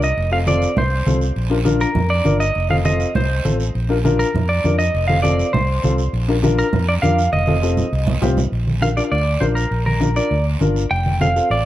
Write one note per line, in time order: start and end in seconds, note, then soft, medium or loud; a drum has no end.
0.00 0.11 C2 medium
0.00 0.32 D#5 medium
0.00 short guiro medium
0.17 0.65 F1 medium
0.17 long guiro medium
0.31 0.37 C4 medium
0.31 0.37 F4 medium
0.31 0.37 A4 medium
0.31 0.38 F5 loud
0.47 0.68 C4 medium
0.47 0.68 F4 medium
0.47 0.68 A4 medium
0.47 0.78 D5 medium
0.47 high conga medium
0.47 short guiro medium
0.62 short guiro medium
0.77 1.01 C2 loud
0.77 1.19 C5 medium
0.77 low conga medium
0.77 long guiro medium
1.06 1.31 C2 medium
1.06 1.22 C4 medium
1.06 1.22 F4 medium
1.06 1.23 A4 medium
1.06 high conga medium
1.06 short guiro medium
1.21 short guiro medium
1.36 1.84 A#1 medium
1.36 long guiro medium
1.50 1.56 D4 medium
1.50 1.56 F4 medium
1.50 1.56 A#4 medium
1.64 1.86 D4 medium
1.64 1.87 F4 medium
1.64 1.87 A#4 loud
1.64 high conga medium
1.64 short guiro medium
1.80 2.12 A#4 medium
1.80 short guiro medium
1.95 2.20 F2 loud
1.95 low conga medium
1.95 long guiro medium
2.10 2.40 D5 medium
2.24 2.50 G1 medium
2.24 2.41 D4 medium
2.24 2.41 F4 medium
2.24 2.41 A#4 medium
2.24 high conga medium
2.24 short guiro medium
2.40 2.70 D#5 medium
2.40 short guiro medium
2.55 3.03 F1 loud
2.55 long guiro medium
2.69 2.75 C4 medium
2.69 2.75 F4 medium
2.69 2.76 A4 medium
2.69 2.76 F5 medium
2.69 high conga medium
2.84 3.06 C4 medium
2.84 3.06 F4 medium
2.84 3.06 A4 medium
2.84 3.13 D#5 loud
2.84 high conga medium
2.84 short guiro medium
3.00 short guiro medium
3.15 3.39 C2 loud
3.15 3.57 C5 medium
3.15 low conga medium
3.15 long guiro medium
3.44 3.69 A1 medium
3.44 3.60 C4 medium
3.44 3.61 F4 medium
3.44 3.61 A4 medium
3.44 high conga medium
3.44 short guiro medium
3.60 short guiro medium
3.75 4.23 A#1 medium
3.75 long guiro medium
3.89 3.95 D4 medium
3.89 3.95 F4 medium
3.89 3.95 A#4 medium
4.04 4.26 D4 medium
4.04 4.26 F4 medium
4.04 4.26 A#4 loud
4.04 high conga medium
4.04 short guiro medium
4.19 4.50 A#4 medium
4.19 short guiro medium
4.34 4.58 F2 medium
4.34 low conga medium
4.34 long guiro medium
4.49 4.77 D5 medium
4.64 4.88 F2 medium
4.64 4.80 D4 medium
4.64 4.80 F4 medium
4.64 4.80 A#4 medium
4.64 high conga medium
4.64 short guiro medium
4.79 5.07 D#5 loud
4.79 short guiro medium
4.94 5.42 F1 medium
4.94 long guiro medium
5.08 5.14 C4 medium
5.08 5.14 F4 medium
5.08 5.15 A4 medium
5.08 5.22 F5 loud
5.08 high conga medium
5.22 5.44 C4 medium
5.22 5.45 F4 medium
5.22 5.45 A4 medium
5.22 5.51 D5 medium
5.22 high conga medium
5.22 short guiro medium
5.39 short guiro medium
5.53 5.78 C2 medium
5.53 5.95 C5 medium
5.53 low conga medium
5.53 long guiro medium
5.83 6.08 C2 medium
5.83 5.99 C4 medium
5.83 6.00 F4 medium
5.83 6.00 A4 medium
5.83 high conga medium
5.83 short guiro medium
5.98 short guiro medium
6.13 6.61 A#1 loud
6.13 long guiro medium
6.28 6.34 D4 medium
6.28 6.34 F4 medium
6.28 6.34 A#4 medium
6.42 6.64 D4 medium
6.42 6.64 F4 medium
6.42 6.64 A#4 loud
6.42 high conga medium
6.42 short guiro medium
6.58 6.86 A#4 medium
6.58 short guiro medium
6.73 6.97 F2 loud
6.73 low conga medium
6.73 long guiro medium
6.89 6.94 D5 medium
7.02 7.27 F2 medium
7.02 7.18 D4 medium
7.02 7.19 F4 medium
7.02 7.19 A#4 medium
7.02 7.32 F5 loud
7.02 high conga medium
7.02 short guiro medium
7.19 short guiro medium
7.33 7.81 F1 medium
7.33 8.18 D#5 medium
7.33 high conga medium
7.33 long guiro medium
7.47 7.53 C4 medium
7.47 7.53 F4 medium
7.47 7.53 A4 medium
7.47 high conga loud
7.62 7.83 C4 medium
7.62 7.84 F4 medium
7.62 7.84 A4 medium
7.62 short guiro medium
7.77 low conga medium
7.77 short guiro medium
7.92 8.16 C2 loud
7.92 long guiro medium
8.07 low conga medium
8.21 8.46 C2 medium
8.21 8.37 C4 medium
8.21 8.38 F4 medium
8.21 8.38 G4 loud
8.21 low conga medium
8.21 short guiro medium
8.37 low conga medium
8.37 short guiro medium
8.52 9.00 A#1 medium
8.52 long guiro medium
8.67 high conga medium
8.81 8.87 D4 medium
8.81 8.87 F4 medium
8.81 8.87 A#4 medium
8.81 8.87 F5 medium
8.81 high conga medium
8.81 short guiro medium
8.96 9.12 D4 medium
8.96 9.12 F4 medium
8.96 9.13 A#4 medium
8.96 9.02 D5 medium
8.96 short guiro medium
9.12 9.36 D2 medium
9.12 9.42 D5 medium
9.12 long guiro medium
9.40 9.65 A#1 medium
9.40 9.62 D4 medium
9.40 9.62 F4 medium
9.40 9.62 A#4 medium
9.40 9.46 C5 medium
9.40 high conga medium
9.40 short guiro medium
9.55 9.84 A#4 medium
9.55 short guiro medium
9.71 10.19 A#1 medium
9.71 long guiro medium
9.86 10.17 A#4 medium
9.86 high conga medium
10.00 10.06 D4 medium
10.00 10.06 F4 medium
10.00 10.06 A#4 medium
10.00 high conga medium
10.00 short guiro medium
10.15 10.32 D4 medium
10.15 10.32 F4 medium
10.15 10.32 A#4 medium
10.15 10.44 D5 medium
10.15 short guiro medium
10.31 10.55 D2 medium
10.31 long guiro medium
10.60 10.85 G1 medium
10.60 10.82 D4 medium
10.60 10.82 F4 medium
10.60 10.82 A#4 medium
10.60 high conga medium
10.60 short guiro medium
10.76 short guiro medium
10.91 11.39 F1 medium
10.91 11.21 G5 loud
10.91 long guiro medium
11.06 high conga medium
11.20 11.26 C4 medium
11.20 11.26 F4 medium
11.20 11.26 A4 medium
11.20 11.49 F5 medium
11.20 high conga medium
11.20 short guiro medium
11.36 11.51 C4 medium
11.36 11.51 F4 medium
11.36 11.52 A4 medium
11.36 short guiro medium
11.50 11.65 A1 medium
11.50 11.65 D5 medium
11.50 long guiro medium